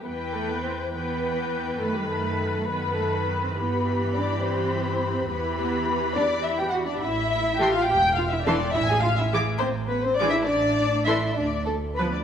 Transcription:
<<
  \new Staff \with { instrumentName = "Violin section" } { \time 6/8 \key e \minor \tempo 4. = 69 g''4. g''4. | b''4. b''4. | b''2. | b''2. |
\key a \minor r4 c'''16 r4 r16 c'''16 r16 | r4 d'''16 r4 r16 d'''16 r16 | r4 c'''16 r4 r16 b''16 r16 | }
  \new Staff \with { instrumentName = "Violin section" } { \time 6/8 \key e \minor b'8 a'16 b'16 c''8 b'4. | a'16 g'16 a'4 b'8 a'8 b'16 c''16 | b'4 d''8 c''4. | b'8 b'8 b'8 d''8 e''16 g''16 fis''16 d''16 |
\key a \minor e''4 g''16 f''16 g''8 f''16 e''16 d''8 | e''16 gis''16 f''16 e''16 r8 c''8 b'16 c''16 d''16 e''16 | d''4 e''8 d''8 a'8 b'16 d''16 | }
  \new Staff \with { instrumentName = "Cello section" } { \time 6/8 \key e \minor b8 a16 b16 c'8 b4. | a16 g16 a4 b8 a8 b16 c'16 | b4 d'8 c'4. | b8 b8 b8 d'8 e'16 g'16 fis'16 d'16 |
\key a \minor e'4 g'16 f'16 g'8 f'16 e'16 d'8 | e'16 gis'16 f'16 e'16 r8 c'8 b16 c'16 d'16 e'16 | d'4 e'8 d'8 a8 b16 d'16 | }
  \new Staff \with { instrumentName = "Viola section" } { \time 6/8 \key e \minor <e b'>4. <e b'>4. | <dis b'>4. <dis b'>4. | <e g'>2. | <e g'>2. |
\key a \minor r4 <e a'>16 r4 r16 <e a'>16 r16 | r4 <e gis'>16 r4 r16 <e gis'>16 r16 | r4 <e a'>16 r4 r16 <f b'>16 r16 | }
  \new Staff \with { instrumentName = "Double bass section" } { \clef bass \time 6/8 \key e \minor e,2. | fis,2. | g,2. | e,2. |
\key a \minor a,,4. e,,4. | a,,4. a,,4. | a,,4. d,4. | }
>>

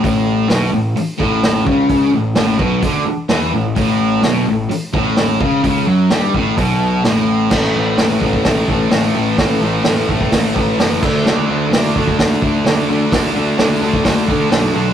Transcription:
<<
  \new Staff \with { instrumentName = "Distorted electric guitar" } { \clef bass \time 4/4 \key a \major \tempo 4 = 128 a,4 b,8 a,8 r8 a,4 cis8~ | cis8 a,8 a,8 b,8 d8 r8 e8 a,8 | a,4 b,8 a,8 r8 a,4 cis8 | cis8 fis8 g8 a,8 b,4 a,4 |
<a, e a>8 <a, e a>8 <a, e a>8 <a, e a>8 <a, e a>8 <a, e a>8 <a, e a>8 <a, e a>8 | <a, e a>8 <a, e a>8 <a, e a>8 <a, e a>8 <a, e a>8 <a, e a>8 <a, e a>8 <d a d'>8 | <d a d'>8 <d a d'>8 <d a d'>8 <d a d'>8 <d a d'>8 <d a d'>8 <d a d'>8 <d a d'>8 | <d a d'>8 <d a d'>8 <d a d'>8 <d a d'>8 <d a d'>8 <d a d'>8 <d a d'>8 <d a d'>8 | }
  \new Staff \with { instrumentName = "Picked electric bass" } { \clef bass \time 4/4 \key a \major a,,4 b,,8 a,,8 r8 a,,4 cis,8~ | cis,8 a,,8 a,,8 b,,8 d,8 r8 e,8 a,,8 | a,,4 b,,8 a,,8 r8 a,,4 cis,8 | cis,8 fis,8 g,8 a,,8 b,,4 a,,4 |
a,,8 a,,8 a,,8 a,,8 a,,8 a,,8 a,,8 a,,8 | a,,8 a,,8 a,,8 a,,8 a,,8 a,,8 fis,,8 d,8 | d,8 d,8 d,8 d,8 d,8 d,8 d,8 d,8 | d,8 d,8 d,8 d,8 d,8 d,8 b,,8 b,,8 | }
  \new DrumStaff \with { instrumentName = "Drums" } \drummode { \time 4/4 <hho bd>4 <hho sn>4 hho8 bd8 <hho sn>8 bd8 | <hho bd>4 <hho sn>8 bd8 <hho bd>4 <hho sn>4 | <hho bd>4 <hho sn>4 hho8 bd8 <hho sn>8 bd8 | <hho bd>4 <hho sn>8 bd8 <hho bd>4 <hho sn>4 |
<cymc bd sn>4 <hho sn>8 bd16 bd16 <hho bd sn>8 bd8 <hho sn>4 | <hho bd sn>4 <hho sn>8 bd16 bd16 <hho bd sn>8 bd8 <hho sn>8 <cymc bd>8 | sn4 <hho sn>8 bd16 bd16 <hho bd sn>8 bd8 <hho sn>4 | <hho bd sn>4 <hho sn>8. bd16 <hho bd sn>8 bd8 <hho sn>4 | }
>>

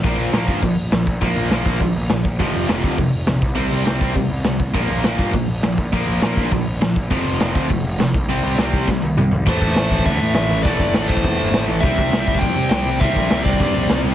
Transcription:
<<
  \new Staff \with { instrumentName = "Lead electric guitar" } { \time 4/4 \key c \mixolydian \tempo 4 = 204 r1 | r1 | r1 | r1 |
r1 | r1 | r1 | r1 |
c''2 e''4 e''4 | d''4. c''2 r8 | e''2 g''4 g''4 | e''4. d''2 r8 | }
  \new Staff \with { instrumentName = "Distorted electric guitar" } { \clef bass \time 4/4 \key c \mixolydian <bes, f bes>4 <bes, f bes>4 <bes, f>8 r8 <bes, f>8 r8 | <bes, f bes>4 <bes, f bes>4 <bes, f>8 r8 <bes, f>8 r8 | <f, c f>4 <f, c f>4 <f, c>8 r8 <f, c>8 r8 | <c g c'>4 <c g c'>4 <c g>8 r8 <c g>8 r8 |
<bes, f bes>4 <bes, f bes>4 <bes, f>8 r8 <bes, f>8 r8 | <bes, f bes>4 <bes, f bes>4 <bes, f>8 r8 <bes, f>8 r8 | <f, c f>4 <f, c f>4 <f, c>8 r8 <f, c>8 r8 | <c g c'>4 <c g c'>4 <c g>8 r8 <c g>8 r8 |
<a, e a>1 | <a, e a>1 | <c g c'>1 | <c g c'>1 | }
  \new Staff \with { instrumentName = "Picked electric bass" } { \clef bass \time 4/4 \key c \mixolydian bes,,8 bes,,8 bes,,8 g,8 bes,,8 bes,,8 bes,,8 bes,,8 | bes,,8 bes,,8 bes,,8 bes,,8 bes,,8 bes,,8 bes,,8 bes,,8 | f,,8 f,,8 f,,8 d,8 f,,8 f,,8 bes,,8 c,8 | c,8 c,8 c,8 c,8 c,8 c,8 c,8 c,8 |
bes,,8 bes,,8 bes,,8 g,8 bes,,8 bes,,8 bes,,8 bes,,8 | bes,,8 bes,,8 bes,,8 bes,,8 bes,,8 bes,,8 bes,,8 bes,,8 | f,,8 f,,8 f,,8 d,8 f,,8 f,,8 f,,8 c,8 | c,8 c,8 c,8 c,8 c,8 c,8 c,8 c,8 |
a,,8 a,,8 a,,8 a,,8 d,8 a,8 a,,8 a,,8 | a,,8 g,,8 a,,8 a,,8 e,8 g,,8 a,,8 a,,8 | c,8 c,8 c,8 c,8 f,8 c8 c,8 c,8 | c,8 bes,,8 c,8 c,8 g,8 bes,,8 c,8 c,8 | }
  \new DrumStaff \with { instrumentName = "Drums" } \drummode { \time 4/4 <hho bd>4 <hho sn>8 bd8 <hho bd>4 <hho sn>8 bd8 | <hho bd>4 <hho sn>8 bd8 <hho bd>4 <hho sn>8 bd8 | <hho bd>4 <hho sn>8 bd8 <hho bd>4 <hho sn>8 bd8 | hho4 <hho sn>8 bd8 <hho bd>4 <hho sn>8 bd8 |
<hho bd>4 <hho sn>8 bd8 <hho bd>4 <hho sn>8 bd8 | <hho bd>4 <hho sn>8 bd8 <hho bd>4 <hho sn>8 bd8 | <hho bd>4 <hho sn>8 bd8 <hho bd>4 <hho sn>8 bd8 | hho4 <hho sn>8 bd8 <bd sn>8 tommh8 toml8 tomfh8 |
<cymc bd>8 bd8 <hho sn>8 bd16 bd16 <hho bd>4 <hho sn>4 | <hho bd>8 bd8 <hho sn>8 bd16 bd16 <hho bd>4 <hho sn>4 | <hho bd>8 bd8 <hho sn>8 bd16 bd16 <hho bd>4 <hho sn>4 | <hho bd>8 bd8 <hho sn>8 bd16 bd16 <hho bd>4 <hho sn>4 | }
>>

